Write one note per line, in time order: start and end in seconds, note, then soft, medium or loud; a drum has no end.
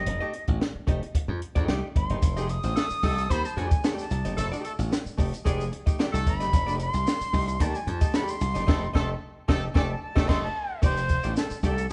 0.00 0.44 D#5 loud
0.06 0.19 F1 loud
0.06 muted hollow-body jazz guitar stroke soft
0.06 closed hi-hat medium
0.21 0.32 A3 medium
0.21 0.33 D#4 medium
0.21 0.33 G4 medium
0.21 0.34 D#5 medium
0.34 muted hollow-body jazz guitar stroke soft
0.34 closed hi-hat medium
0.48 0.59 A1 medium
0.48 muted hollow-body jazz guitar stroke soft
0.48 kick medium
0.48 closed hi-hat soft
0.60 muted hollow-body jazz guitar stroke soft
0.60 snare loud
0.75 muted slap bass stroke medium
0.87 1.00 F1 medium
0.87 1.02 A3 medium
0.87 1.02 D#4 medium
0.87 1.01 G4 medium
0.87 1.02 D#5 medium
0.87 kick loud
0.87 closed hi-hat medium
1.02 muted hollow-body jazz guitar stroke soft
1.02 closed hi-hat medium
1.15 muted hollow-body jazz guitar stroke soft
1.15 kick loud
1.15 closed hi-hat loud
1.28 1.39 F2 loud
1.28 muted hollow-body jazz guitar stroke soft
1.42 closed hi-hat medium
1.55 1.67 F2 medium
1.55 1.67 A3 medium
1.55 1.68 D#4 medium
1.55 1.68 G4 medium
1.55 1.69 D#5 medium
1.55 kick loud
1.55 closed hi-hat medium
1.68 1.81 C2 medium
1.68 1.86 A3 medium
1.68 1.87 D#4 medium
1.68 1.87 G4 medium
1.68 1.87 D5 medium
1.68 snare loud
1.95 2.08 G1 medium
1.95 2.51 C6 loud
1.95 muted hollow-body jazz guitar stroke soft
1.95 kick loud
1.95 closed hi-hat medium
2.10 2.21 F#1 medium
2.10 2.22 A3 soft
2.10 2.22 D#4 medium
2.10 2.22 G4 medium
2.10 2.23 D#5 medium
2.10 closed hi-hat medium
2.22 2.58 F1 loud
2.22 muted hollow-body jazz guitar stroke soft
2.22 kick loud
2.22 closed hi-hat loud
2.22 shaker medium
2.37 2.45 G#3 medium
2.37 2.48 A3 medium
2.37 2.48 D#4 medium
2.37 2.49 G4 medium
2.37 2.45 G#4 medium
2.37 2.50 D#5 medium
2.37 shaker medium
2.49 3.32 D#6 loud
2.49 muted hollow-body jazz guitar stroke soft
2.49 closed hi-hat medium
2.49 shaker soft
2.63 2.74 A1 medium
2.63 2.74 C4 medium
2.63 2.74 C5 medium
2.63 muted hollow-body jazz guitar stroke soft
2.63 closed hi-hat medium
2.63 shaker medium
2.76 2.85 A3 medium
2.76 2.85 A4 medium
2.76 muted hollow-body jazz guitar stroke soft
2.76 snare loud
2.76 shaker medium
2.90 muted slap bass stroke soft
2.90 shaker medium
3.03 3.26 C2 medium
3.03 3.18 A3 medium
3.03 3.25 A3 medium
3.03 3.17 D#4 medium
3.03 3.17 G4 medium
3.03 3.25 A4 loud
3.03 3.17 D#5 medium
3.03 kick medium
3.03 open hi-hat medium
3.03 shaker medium
3.18 muted hollow-body jazz guitar stroke soft
3.18 closed hi-hat medium
3.18 shaker medium
3.30 3.43 D#2 medium
3.30 3.52 C4 medium
3.30 3.52 C5 loud
3.30 3.47 B5 loud
3.30 muted hollow-body jazz guitar stroke soft
3.30 kick medium
3.30 closed hi-hat medium
3.30 shaker medium
3.45 3.60 A5 medium
3.45 muted hollow-body jazz guitar stroke soft
3.45 closed hi-hat soft
3.45 shaker medium
3.57 3.69 F2 medium
3.57 3.77 A3 medium
3.57 3.71 D#4 medium
3.57 3.70 G4 medium
3.57 3.70 D5 loud
3.57 3.87 G#5 medium
3.57 closed hi-hat medium
3.71 muted hollow-body jazz guitar stroke soft
3.71 kick loud
3.71 closed hi-hat medium
3.71 shaker medium
3.84 4.04 A3 loud
3.84 4.05 D#4 medium
3.84 4.05 G4 medium
3.84 4.05 D5 loud
3.84 3.99 A5 medium
3.84 snare loud
3.84 shaker medium
3.98 4.76 A5 loud
3.98 snare soft
3.98 shaker medium
4.10 4.23 C2 medium
4.10 muted hollow-body jazz guitar stroke soft
4.10 closed hi-hat medium
4.10 shaker medium
4.25 4.36 F#1 medium
4.25 4.36 A3 soft
4.25 4.37 D#4 medium
4.25 4.37 G4 medium
4.25 4.38 D#5 medium
4.25 closed hi-hat medium
4.25 shaker medium
4.37 4.50 F1 loud
4.37 4.46 A3 medium
4.37 4.46 A4 loud
4.37 muted hollow-body jazz guitar stroke soft
4.37 closed hi-hat medium
4.37 shaker medium
4.52 4.64 A3 medium
4.52 4.64 D#4 medium
4.52 4.64 G4 medium
4.52 4.65 D#5 medium
4.52 shaker medium
4.65 4.73 A3 medium
4.65 4.73 A4 medium
4.65 muted hollow-body jazz guitar stroke medium
4.65 closed hi-hat medium
4.65 shaker medium
4.79 4.90 A1 medium
4.79 muted hollow-body jazz guitar stroke soft
4.79 closed hi-hat medium
4.79 shaker medium
4.91 muted hollow-body jazz guitar stroke medium
4.91 snare loud
4.91 shaker medium
5.06 muted slap bass stroke medium
5.06 shaker medium
5.18 5.31 F1 loud
5.18 5.32 A3 medium
5.18 5.33 D#4 medium
5.18 5.32 G4 medium
5.18 5.32 D#5 medium
5.18 kick loud
5.18 open hi-hat medium
5.18 shaker soft
5.33 muted hollow-body jazz guitar stroke medium
5.33 closed hi-hat medium
5.33 shaker medium
5.45 5.69 F1 loud
5.45 5.67 G#3 loud
5.45 5.63 A3 medium
5.45 5.63 D#4 medium
5.45 5.64 G4 medium
5.45 5.67 G#4 loud
5.45 5.64 D5 medium
5.45 kick loud
5.45 closed hi-hat loud
5.45 shaker medium
5.60 closed hi-hat soft
5.60 shaker medium
5.72 muted hollow-body jazz guitar stroke soft
5.72 closed hi-hat medium
5.86 5.98 A3 soft
5.86 5.98 D#4 soft
5.86 5.99 G4 medium
5.86 5.99 D#5 medium
5.86 kick loud
5.86 closed hi-hat medium
5.86 shaker medium
5.99 6.17 A3 medium
5.99 6.17 D#4 medium
5.99 6.17 G4 loud
5.99 6.18 D5 loud
5.99 snare loud
5.99 shaker medium
6.13 6.24 C2 medium
6.13 6.35 A3 loud
6.13 6.35 A4 loud
6.13 closed hi-hat soft
6.13 shaker medium
6.26 6.41 G1 medium
6.26 6.77 B5 loud
6.26 muted hollow-body jazz guitar stroke soft
6.26 kick medium
6.26 closed hi-hat medium
6.26 shaker medium
6.40 6.51 F#1 medium
6.40 6.51 A3 medium
6.40 6.52 D#4 medium
6.40 6.52 G4 medium
6.40 6.53 D#5 medium
6.40 snare soft
6.40 closed hi-hat soft
6.40 shaker medium
6.53 6.88 F1 loud
6.53 muted hollow-body jazz guitar stroke soft
6.53 kick loud
6.53 closed hi-hat loud
6.53 shaker medium
6.67 6.78 A3 medium
6.67 6.78 D#4 medium
6.67 6.79 G4 medium
6.67 6.80 D#5 medium
6.67 closed hi-hat soft
6.67 shaker medium
6.79 7.63 C6 loud
6.79 muted hollow-body jazz guitar stroke soft
6.79 closed hi-hat medium
6.79 shaker soft
6.94 7.05 C2 medium
6.94 muted hollow-body jazz guitar stroke medium
6.94 closed hi-hat medium
6.94 shaker medium
7.06 muted hollow-body jazz guitar stroke soft
7.06 snare loud
7.06 shaker medium
7.21 muted slap bass stroke medium
7.21 shaker medium
7.33 7.57 C2 medium
7.33 7.48 A3 medium
7.33 7.47 D#4 medium
7.33 7.47 G4 medium
7.33 7.47 D#5 medium
7.33 kick medium
7.33 open hi-hat medium
7.33 shaker medium
7.47 muted hollow-body jazz guitar stroke soft
7.47 closed hi-hat medium
7.47 shaker medium
7.60 7.73 D#2 loud
7.60 7.78 A3 medium
7.60 7.78 D#4 loud
7.60 7.79 G4 medium
7.60 7.79 D5 loud
7.60 7.77 A5 loud
7.60 kick loud
7.60 closed hi-hat loud
7.60 shaker medium
7.75 7.89 G#5 medium
7.75 shaker medium
7.87 7.99 F2 loud
7.87 8.17 A5 loud
7.87 muted hollow-body jazz guitar stroke soft
7.87 closed hi-hat medium
8.01 8.13 A3 medium
8.01 8.13 D#4 medium
8.01 8.14 G4 medium
8.01 8.14 D#5 medium
8.01 kick loud
8.01 closed hi-hat medium
8.01 shaker medium
8.14 8.34 A3 medium
8.14 8.35 D#4 medium
8.14 8.35 G4 loud
8.14 8.35 D5 loud
8.14 8.31 B5 loud
8.14 snare loud
8.14 shaker medium
8.28 9.10 C6 loud
8.28 shaker medium
8.40 8.53 C2 medium
8.40 muted hollow-body jazz guitar stroke soft
8.40 closed hi-hat medium
8.40 shaker medium
8.54 8.67 F#1 medium
8.54 8.67 A3 medium
8.54 8.66 D#4 medium
8.54 8.66 G4 medium
8.54 8.65 D#5 medium
8.54 snare soft
8.54 closed hi-hat medium
8.54 shaker medium
8.67 8.86 F1 loud
8.67 8.87 A3 medium
8.67 8.82 A3 medium
8.67 8.86 D#4 medium
8.67 8.86 G4 loud
8.67 8.82 A4 medium
8.67 8.86 D#5 loud
8.67 kick loud
8.67 snare loud
8.67 crash medium
8.93 9.14 F1 loud
8.93 9.14 A3 loud
8.93 9.09 A3 loud
8.93 9.13 D#4 loud
8.93 9.13 G4 medium
8.93 9.09 A4 loud
8.93 9.13 D#5 loud
8.93 kick loud
8.93 snare loud
9.48 9.67 F1 loud
9.48 9.67 A3 loud
9.48 9.63 A3 loud
9.48 9.67 D#4 loud
9.48 9.67 G4 medium
9.48 9.63 A4 loud
9.48 9.68 D#5 loud
9.48 kick loud
9.48 snare loud
9.74 9.94 F1 loud
9.74 9.93 A3 loud
9.74 9.90 A3 medium
9.74 9.94 D#4 loud
9.74 9.94 G4 loud
9.74 9.89 A4 loud
9.74 9.94 D5 loud
9.74 9.82 G#5 medium
9.74 kick loud
9.74 snare loud
9.90 10.01 A5 medium
10.02 10.30 A5 loud
10.16 10.27 F1 loud
10.16 10.24 A3 loud
10.16 10.28 A3 loud
10.16 10.27 D#4 medium
10.16 10.27 G4 loud
10.16 10.24 A4 medium
10.16 10.26 D#5 loud
10.16 kick loud
10.16 snare loud
10.28 10.48 F1 loud
10.28 10.48 A3 loud
10.28 10.43 A3 loud
10.28 10.47 D#4 loud
10.28 10.47 G4 loud
10.28 10.43 A4 loud
10.28 10.47 D#5 loud
10.28 10.42 C6 loud
10.28 kick loud
10.28 snare loud
10.28 crash medium
10.43 10.80 A5 loud
10.82 11.18 F1 loud
10.82 11.00 A3 medium
10.82 11.00 D#4 medium
10.82 11.01 G4 medium
10.82 11.33 C5 loud
10.82 11.01 D5 medium
10.82 kick loud
10.82 crash loud
10.82 shaker medium
10.97 closed hi-hat soft
10.97 shaker medium
11.09 muted hollow-body jazz guitar stroke soft
11.09 kick medium
11.09 closed hi-hat medium
11.09 shaker soft
11.23 11.35 A1 medium
11.23 11.37 A3 medium
11.23 11.37 D#4 medium
11.23 11.37 G4 medium
11.23 11.36 D5 medium
11.23 closed hi-hat medium
11.23 shaker medium
11.36 11.61 A4 loud
11.36 snare loud
11.36 shaker medium
11.50 muted hollow-body jazz guitar stroke soft
11.50 muted slap bass stroke medium
11.50 shaker medium
11.63 11.86 C2 loud
11.63 11.81 A3 medium
11.63 11.77 D#4 medium
11.63 11.77 G4 medium
11.63 11.88 A4 loud
11.63 11.76 D5 medium
11.63 kick medium
11.63 closed hi-hat medium
11.63 shaker soft
11.77 muted hollow-body jazz guitar stroke medium
11.77 closed hi-hat medium
11.77 shaker medium
11.90 11.93 G#4 loud